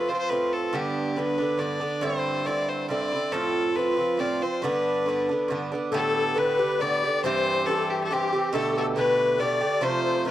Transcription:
Already playing: bouzouki C4
0.09 bouzouki C4 F4, fiddle C5
0.13 bouzouki F3, fiddle C5
0.19 fiddle C5
0.29 bouzouki A2 F3 C4 F4, fiddle B4
0.53 fiddle A4
0.73 bouzouki G2 D3 B3 D4, fiddle G4
1.16 bouzouki G2 D3 B3 D4, fiddle B4
1.38 bouzouki D3 B3 D4
1.58 bouzouki G2 D3 B3 D4, fiddle D5
1.80 bouzouki D3 B3 D4
2.01 bouzouki G2 D3 C4 E4, fiddle C5
2.45 bouzouki G2 D3 C4 E4, fiddle D5
2.69 fiddle C5
2.89 bouzouki G2 D3 C4 E4, fiddle D5
3.13 bouzouki D3 C4 E4
3.32 bouzouki A2 F3 C4 F4, fiddle A4
3.75 bouzouki A2 F3 C4 F4, fiddle B4
3.97 bouzouki F3 C4 F4
4.17 bouzouki A2 F3 C4 F4, fiddle D5
4.42 bouzouki F3 C4 F4, fiddle C5
4.62 bouzouki G2 D3 B3 D4, fiddle B4
5.06 bouzouki G2 D3 B3 D4
5.29 bouzouki D3 B3 D4
5.48 bouzouki G2 D3 B3 D4
5.72 bouzouki D3 B3 D4
5.91 bouzouki A2 D3 B3 G4, accordion A4, fiddle A4
6.14 accordion A4
6.34 bouzouki A2 D3 B3 G4, accordion B4, fiddle B4
6.59 bouzouki D3 B3 G4
6.79 bouzouki A2 D3 B3, accordion D5, fiddle D5
6.84 bouzouki G4
7.03 bouzouki D3 B3 G4
7.23 bouzouki G2 E3 C4 G4, accordion C5, fiddle C5
7.66 bouzouki G2 E3 C4, fiddle A4, accordion A4
7.70 bouzouki G4
7.90 fiddle G4, accordion G4
8.03 fiddle A4
8.09 bouzouki G2 E3 C4, accordion G4, fiddle G4
8.14 bouzouki G4
8.33 bouzouki E3 C4 G4
8.53 bouzouki B2 D3 A3 G4, accordion A4, fiddle A4
8.76 accordion A4, fiddle A4
8.95 bouzouki B2 D3 A3 G4, fiddle B4, accordion B4
9.38 bouzouki B2 D3 A3 G4, accordion D5, fiddle D5
9.61 bouzouki D3 A3 G4
9.81 bouzouki C3 F3 A3 F4, fiddle C5, accordion C5
10.25 bouzouki C3 F3 A3 F4, accordion B4, fiddle B4

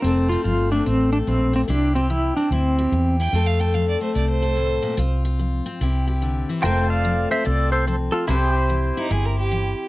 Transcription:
0.02 fingered electric bass F1, steel-string acoustic guitar F2 A3 C4 A4, pedal steel guitar C4
0.29 steel-string acoustic guitar C4, pedal steel guitar F4
0.44 fingered electric bass G1, steel-string acoustic guitar F3, pedal steel guitar F4
0.72 steel-string acoustic guitar A3, pedal steel guitar D4
0.86 fingered electric bass A1, steel-string acoustic guitar C3 C4, pedal steel guitar C4
1.12 pedal steel guitar D4, steel-string acoustic guitar A4
1.27 fingered electric bass A#1, steel-string acoustic guitar A2, pedal steel guitar C4
1.53 steel-string acoustic guitar A#2, pedal steel guitar C4
1.68 fingered electric bass C2, steel-string acoustic guitar C3 C4 E4 G4, pedal steel guitar D4
1.95 pedal steel guitar C4, steel-string acoustic guitar G4
2.10 steel-string acoustic guitar E3, pedal steel guitar E4
2.37 steel-string acoustic guitar C4, pedal steel guitar D4
2.51 fingered electric bass D2, steel-string acoustic guitar G2 E4, pedal steel guitar C4
2.78 steel-string acoustic guitar G4
2.92 fingered electric bass E2, steel-string acoustic guitar E3
3.20 steel-string acoustic guitar E4, fiddle G5
3.33 fingered electric bass F2, steel-string acoustic guitar F2 A3 C4 A4
3.47 fiddle F5
3.60 steel-string acoustic guitar A4, fiddle G5
3.74 steel-string acoustic guitar F3, fiddle F5
3.89 fiddle D5
4.01 steel-string acoustic guitar A3, fiddle C5
4.15 fingered electric bass C2, steel-string acoustic guitar C3 C4, fiddle D5
4.29 fiddle C5
4.42 steel-string acoustic guitar A4
4.57 steel-string acoustic guitar A2
4.82 steel-string acoustic guitar A#2
4.97 fingered electric bass C2, steel-string acoustic guitar C3 C4 F4
5.25 steel-string acoustic guitar F4
5.39 steel-string acoustic guitar F3
5.66 steel-string acoustic guitar C4
5.81 fingered electric bass C2, steel-string acoustic guitar C3 C4 E4 G4
6.08 steel-string acoustic guitar G4
6.22 steel-string acoustic guitar D3
6.49 steel-string acoustic guitar E3
6.62 fingered electric bass F1, steel-string acoustic guitar F2 A3 C4 A4, pedal steel guitar F4 A#4 C5 G5
6.83 pedal steel guitar A4
6.90 pedal steel guitar D5 F5
7.05 steel-string acoustic guitar F3
7.31 steel-string acoustic guitar C4, pedal steel guitar C5 E5
7.45 fingered electric bass C2, steel-string acoustic guitar C3, pedal steel guitar A4 D5
7.72 pedal steel guitar A4 C5
7.87 steel-string acoustic guitar F3, pedal steel guitar A4 C5
8.12 pedal steel guitar F4 A4
8.28 fingered electric bass C2, steel-string acoustic guitar C3 C4 E4 G4, pedal steel guitar E4 G4 A4 C5
8.54 pedal steel guitar G4
8.69 steel-string acoustic guitar E3
8.97 fiddle D#4, steel-string acoustic guitar E4
9.11 fingered electric bass G1, steel-string acoustic guitar G2, fiddle G#4
9.25 fiddle A#4
9.38 fiddle G4
9.52 steel-string acoustic guitar E3

